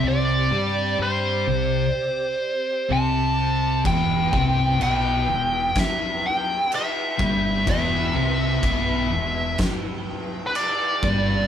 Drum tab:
CC |--------|x-x-x-x-|x-x-x-x-|
SD |--------|----o---|----o---|
BD |--------|oo--o--o|o-o-o--o|